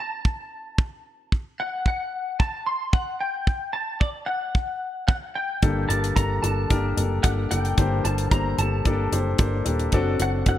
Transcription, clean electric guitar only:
0.00 1.02 A5 medium
1.60 1.87 F#5 medium
1.88 2.39 F#5 medium
2.40 2.66 A5 medium
2.67 2.94 C6 medium
2.93 3.21 F#5 medium
3.20 3.73 G5 medium
3.73 4.01 A5 medium
4.00 4.08 D5 medium
4.26 5.06 F#5 medium
5.08 5.15 F#5 medium
5.35 5.88 G5 medium
5.89 6.15 A5 medium
6.16 6.42 A#5 medium
6.43 7.23 A5 medium
7.23 7.31 F#5 medium
7.51 8.04 G5 medium
8.05 8.31 A5 medium
8.32 8.58 A#5 medium
8.59 9.62 A5 medium
10.22 10.29 F#5 medium
10.49 10.58 F#5 medium

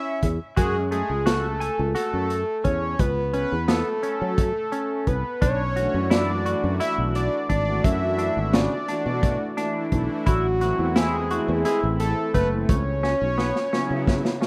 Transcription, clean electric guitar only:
0.00 0.27 C#4 medium
0.56 0.77 F#4 medium
0.91 1.11 A3 medium
1.26 1.46 F#4 medium
1.60 1.81 G#5 medium
1.95 2.35 F#4 medium
2.64 3.04 C#4 medium
3.33 3.54 C#4 medium
3.68 3.88 B3 medium
4.03 4.43 C#4 medium
4.72 5.12 C#4 medium
5.42 5.62 D4 medium
5.76 5.96 F#4 medium
6.10 6.31 E4 medium
6.46 6.66 F#4 medium
6.80 7.20 E4 medium
7.49 7.89 D4 medium
8.19 8.39 D4 medium
8.53 8.73 C#3 medium
8.88 9.28 D4 medium
9.57 9.97 D4 medium
10.26 10.46 E4 medium
10.61 10.81 F#4 medium
10.96 11.16 E4 medium
11.31 11.51 F#4 medium
11.65 12.05 E4 medium
12.34 12.74 A3 medium
13.03 13.23 C#4 medium
13.38 13.58 B3 medium
13.73 14.13 C#4 medium
14.41 14.47 C#4 medium

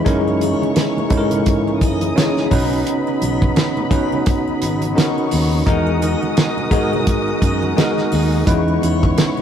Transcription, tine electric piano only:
0.04 0.99 G#3 medium
0.04 0.99 C#4 medium
0.04 0.99 D#4 medium
0.04 0.99 E4 medium
0.04 0.99 A#4 loud
1.09 2.03 G#3 medium
1.09 2.04 C#4 medium
1.09 2.04 D#4 medium
1.09 2.04 E4 medium
1.09 1.18 A4 medium
1.17 2.08 A#4 loud
2.16 2.51 G#3 medium
2.16 2.50 C#4 medium
2.16 2.50 D#4 medium
2.16 2.52 E4 medium
2.16 2.52 C#5 medium
2.51 3.75 B3 medium
2.51 3.75 C#4 medium
2.51 3.75 D#4 medium
2.51 3.75 F#4 medium
2.51 3.75 B4 loud
3.90 4.84 B3 medium
3.90 4.84 C#4 medium
3.90 4.85 D#4 medium
3.90 4.85 F#4 medium
3.90 4.85 B4 medium
4.95 5.58 B3 medium
4.95 5.58 C#4 medium
4.95 5.58 D#4 medium
4.95 5.59 F#4 medium
4.95 5.59 A#4 medium
5.66 6.60 G#3 medium
5.66 6.60 B3 medium
5.66 6.60 D#4 medium
5.66 6.60 F#4 medium
5.66 6.60 A#4 loud
6.71 7.65 G#3 loud
6.71 7.65 B3 medium
6.71 7.65 D#4 medium
6.71 7.65 F#4 medium
6.71 7.65 A#4 loud
7.76 8.39 G#3 medium
7.76 8.39 B3 medium
7.76 8.39 D#4 medium
7.76 8.39 F#4 medium
7.76 7.85 G#4 medium
7.84 8.43 A#4 medium
8.46 9.40 G#3 medium
8.46 9.40 C#4 medium
8.46 9.40 D#4 medium
8.46 9.41 E4 medium
8.46 9.41 B4 loud

